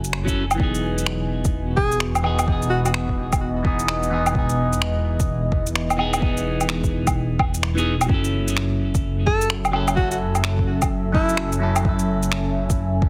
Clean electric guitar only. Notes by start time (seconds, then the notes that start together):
0.25 F#3 C#4 E4
0.29 A4
0.55 E3 B3
0.60 D#4 G#4
2.22 E3 B3 D#4 G#4
2.44 E3 B3
2.49 D#4 G#4
3.63 E3 B3 D#4 G#4
4.10 E3 B3 D#4 G#4
4.31 E3 B3
4.36 D#4 G#4
5.97 E3 B3 D#4
6.01 G#4
6.17 E3 B3
6.23 D#4 G#4
7.75 E3 B3 D#4 G#4
8.06 F#3 C#4
8.11 E4 A4
9.72 F#3 C#4 E4 A4
9.94 F#3 C#4
9.99 E4 A4
11.12 F#3 C#4 E4 A4
11.59 F#3 C#4 E4 A4
11.80 F#3 C#4
11.86 E4 A4